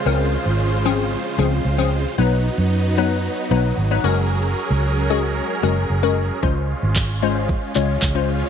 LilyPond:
<<
  \new Staff \with { instrumentName = "Supersaw synth" } { \time 4/4 \key des \major \tempo 4 = 113 <des aes f' c''>1 | <ges ces' ees'>2.~ <ges ces' ees'>8 <des' aes' bes'>8~ | <des' aes' bes'>1 | <aes des' f'>1 | }
  \new Staff \with { instrumentName = "Synth pluck" } { \time 4/4 \key des \major <f c' des' bes'>4~ <f c' des' bes'>16 r16 <f c' des' aes'>8. r16 <f c' des' aes'>8. <f c' des' aes'>8. | <ges ces' ees' ces''>4~ <ges ces' ees' ces''>16 r16 <ges ces' ees' ces''>8. r16 <ges ces' ees' ces''>8. <ges ces' ees' ces''>16 <aes des' ges' bes'>8~ | <aes des' ges' bes'>4~ <aes des' ges' bes'>16 r16 <aes des' ges' aes'>8. r16 <aes des' ges' bes'>8. <aes des' ges' bes'>8. | <aes des' f' c''>4~ <aes des' f' c''>16 r16 <aes des' f' c''>8. r16 <aes des' f' des''>8. <aes des' f' c''>8. | }
  \new Staff \with { instrumentName = "Fingered electric bass" } { \clef bass \time 4/4 \key des \major des,8. aes,,4.~ aes,,16 des,8 des,4 | ces,8. ges,4.~ ges,16 ces,8 aes,,8 ges,,8~ | ges,,8. des,4.~ des,16 ges,,8 ges,,4 | des,8. aes,,4.~ aes,,16 des,8 des,4 | }
  \new DrumStaff \with { instrumentName = "Drums" } \drummode { \time 4/4 r4 r4 r4 r4 | r4 r4 r4 r4 | r4 r4 r4 r4 | bd4 <hc bd>4 bd8 hc8 <hc bd>4 | }
>>